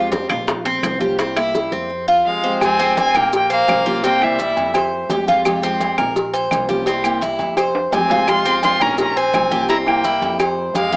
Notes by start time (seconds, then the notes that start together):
Already playing: F2 F3 G#3 C4 F4 G4
0.12 F3 G#3 C4 G4, high bongo, high conga, maracas
0.29 A#1 F4, high conga, low conga, high timbale, claves, maracas
0.47 muted steel-string acoustic guitar stroke, high bongo, high conga, low conga, maracas
0.65 C4, high bongo, high conga, high timbale
0.82 C2 A#3 C#4 F4 C5, high bongo, low bongo, high conga, high timbale, claves, maracas
1.00 A#3 C#4 F4 G4 C5, high conga, maracas
1.18 C3 G3 A#3 C4 E4 G4, high bongo, high timbale, maracas
1.36 G3 A#3 E4 G4, high bongo, high conga, high timbale, claves
1.53 G3 A#3 E4 G4, high bongo, high conga, maracas
1.72 F2 C4, high conga, maracas
1.89 muted steel-string acoustic guitar stroke
2.08 F4
2.25 F3 G#3 C4 G4 F5
2.43 F3 G#3 C4 G4 C5
2.61 F2 C3 F3 G#3 C4 G4 G#5, cowbell, high conga, low agogo, claves, maracas
2.79 F3 G#3 C4 G4, high conga, low agogo
2.96 F3 C4 G4 G#5, cowbell, high conga, low agogo, maracas
3.15 A#1 A#3 A#4 G5, high conga, low conga, low agogo, claves, maracas
3.33 A#3 G5, muted steel-string acoustic guitar stroke, cowbell, high conga, maracas
3.50 A#3 C5 F5, high conga, low agogo, maracas
3.68 C2 C#4 F4 C5, cowbell, high conga, low timbale, low agogo, claves, maracas
3.85 A#3 C#4 F4 G4 C5, high conga, maracas
4.03 C3 G3 A#3 C4 E4 G4 G5, cowbell, low agogo, maracas
4.21 G3 A#3 E4 G4 E5, high conga, low agogo, claves
4.39 G3 A#3 E4 G4, cowbell, high conga, maracas
4.57 F2, cowbell, high conga, low agogo, maracas
4.74 C5, muted steel-string acoustic guitar stroke, cowbell, high conga, low agogo, claves, maracas
4.92 high conga
5.09 F2 F3 G#3 C4 G4, cowbell, high conga, low timbale, low agogo, maracas
5.26 F3 G#3 C4 F4 G4, high conga, low agogo, maracas
5.45 C3 F3 G#3 C4 G4, cowbell, high conga, low agogo, claves, maracas
5.62 F3 G#3 C4 G4, high conga, low agogo, maracas
5.80 F3 G#3 C4 G4, cowbell, high conga, low agogo, maracas
5.98 A#1 A#4, high conga, low conga, low agogo, claves, maracas
6.16 muted steel-string acoustic guitar stroke, cowbell, high conga, maracas
6.34 C5, high conga, low agogo, maracas
6.51 C2 A#3 C#4 F4 C5, cowbell, high conga, low agogo, claves, maracas
6.69 A#3 C#4 F4 G4 C5, high conga, maracas
6.86 C3 G3 A#3 C4 E4 G4, cowbell, low agogo, maracas
7.04 G3 A#3 E4 G4, high conga, low agogo, claves, maracas
7.21 G3 A#3 E4 G4, cowbell, high conga, maracas
7.39 F2, cowbell, high conga, low agogo, maracas
7.57 C5, muted steel-string acoustic guitar stroke, cowbell, high conga, low agogo, claves, maracas
7.75 high conga, high timbale
7.91 F2 F3 G#3 C4 G4 G#5, cowbell, high conga, low timbale, low agogo, maracas
8.08 F3 G#3 C4 F4 G4, high conga, low timbale, low agogo, maracas
8.27 C3 F3 G#3 C4 F4 G4 C6, cowbell, high conga, low agogo, claves, maracas
8.44 F3 G#3 C4 G4, high conga, low agogo, maracas
8.62 F3 G#3 C4 F4 G4 C6, cowbell, high conga, low agogo, maracas
8.80 A#1 C#4 A#4 A#5, high conga, low conga, low agogo, claves, maracas
8.98 C#4 A#5, muted steel-string acoustic guitar stroke, cowbell, high conga, low conga, maracas
9.16 C4 C5 G#5, high conga, low agogo
9.32 C2 A#3 C#4 F4 C5, cowbell, high conga, low timbale, low agogo, claves, maracas
9.50 A#3 C#4 F4 G4 C5, high conga, maracas
9.68 C3 G3 A#3 C4 E4 G4 A#5, cowbell, low agogo, maracas
9.86 G3 A#3 E4 G4 G5, high conga, low agogo, claves
10.03 G3 E4, cowbell, high conga, maracas
10.22 F2, cowbell, high conga, low agogo, maracas
10.39 C5, muted steel-string acoustic guitar stroke, cowbell, high conga, low agogo, claves, maracas
10.58 high conga
10.74 F2 F3 G#3 C4 G4 F5, cowbell, high conga, low agogo, maracas
10.92 G#3 C4 F4 G4, high conga, low agogo, maracas